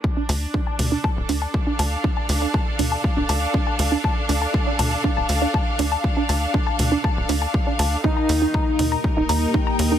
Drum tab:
HH |-o-o-o-o|-o-o-o-o|-o-o-o-o|-o-o-o-o|
T2 |---o----|---o----|---o----|---o----|
BD |o-o-o-o-|o-o-o-o-|o-o-o-o-|o-o-o-o-|

HH |-o-o-o-o|
T2 |---o----|
BD |o-o-o-o-|